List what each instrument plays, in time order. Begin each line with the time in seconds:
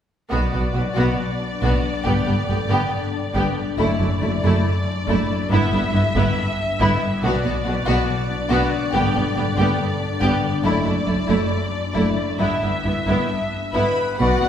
0.30 double bass section B1, harp B2, cello section B2, viola section B3, violin section F#4 D5
0.52 double bass section B1, cello section B2, harp F#3, viola section B3, violin section F#4
0.74 double bass section B1, cello section B2, viola section B3, violin section F#4, harp F#4
0.96 double bass section B1, cello section B2, harp F#3, viola section B3, violin section F#4
1.18 harp B2
1.39 harp D4
1.61 double bass section B1, cello section B2, viola section B3, harp F#4, violin section F#4
1.82 harp F#3
2.04 double bass section G1, harp G2, cello section G2, viola section B3, violin section G4
2.26 double bass section G1, cello section G2, harp D3, viola section B3, violin section G4
2.48 double bass section G1, cello section G2, viola section B3, harp G4, violin section G4
2.69 double bass section G1, cello section G2, harp D3, viola section B3, violin section G4
2.91 harp G2
3.13 harp D4
3.34 double bass section G1, cello section G2, viola section B3, harp G4, violin section G4
3.56 harp D3
3.78 double bass section F#1, cello section F#2, harp F#2, viola section A3, violin section E4 D5
3.99 double bass section F#1, cello section F#2, harp F#3, viola section A3, violin section E4
4.21 double bass section F#1, cello section F#2, viola section A3, violin section E4, harp E4
4.43 double bass section F#1, cello section F#2, harp F#3, viola section A3, violin section E4
4.65 harp F#2
4.86 harp D4
5.07 double bass section F#1, cello section F#2, viola section A3, harp E4, violin section E4
5.30 harp F#3
5.50 double bass section G1, cello section G2, harp G2, viola section B3, violin section E4 E5
5.72 double bass section G1, cello section G2, harp G3, viola section B3, violin section E4
5.93 double bass section G1, cello section G2, viola section B3, harp E4, violin section E4
6.15 double bass section G1, cello section G2, harp G3, viola section B3, violin section E4
6.37 harp G2
6.58 harp B3
6.80 double bass section G1, cello section G2, viola section B3, harp E4, violin section E4
7.02 harp G3
7.22 double bass section B1, harp B2, cello section B2, viola section B3, violin section F#4 D5
7.44 double bass section B1, cello section B2, harp F#3, viola section B3, violin section F#4
7.65 double bass section B1, cello section B2, viola section B3, violin section F#4, harp F#4
7.86 double bass section B1, cello section B2, harp F#3, viola section B3, violin section F#4
8.08 harp B2
8.29 harp D4
8.50 double bass section B1, cello section B2, viola section B3, violin section F#4, harp F#4
8.72 harp F#3
8.92 double bass section G1, harp G2, cello section G2, viola section B3, violin section G4
9.14 double bass section G1, cello section G2, harp D3, viola section B3, violin section G4
9.35 double bass section G1, cello section G2, viola section B3, harp G4, violin section G4
9.57 double bass section G1, cello section G2, harp D3, viola section B3, violin section G4
9.79 harp G2
10.00 harp D4
10.21 double bass section G1, cello section G2, viola section B3, harp G4, violin section G4
10.42 harp D3
10.63 double bass section F#1, harp F#2, cello section F#2, viola section A3, violin section E4 D5
10.85 double bass section F#1, cello section F#2, harp F#3, viola section A3, violin section E4
11.06 double bass section F#1, cello section F#2, viola section A3, harp E4, violin section E4
11.28 double bass section F#1, cello section F#2, harp F#3, viola section A3, violin section E4
11.50 harp F#2
11.72 harp D4
11.94 double bass section F#1, cello section F#2, viola section A3, harp E4, violin section E4
12.16 harp F#3
12.38 double bass section G1, harp G2, cello section G2, viola section B3, violin section E4 E5
12.61 double bass section G1, cello section G2, harp G3, viola section B3, violin section E4
12.84 double bass section G1, cello section G2, viola section B3, harp E4, violin section E4
13.07 double bass section G1, cello section G2, harp G3, viola section B3, violin section E4
13.29 harp G2
13.52 harp B3
13.74 double bass section G1, cello section G2, viola section B3, violin section E4 B5, harp E4, clarinet B4, trumpet B4
13.97 harp G3
14.19 double bass section B1, cello section B2, harp B2, viola section B3 B4, trumpet F#4, clarinet F#4, violin section D5 F#5
14.40 double bass section B1, cello section B2, harp F#3, viola section B3 B4, violin section D5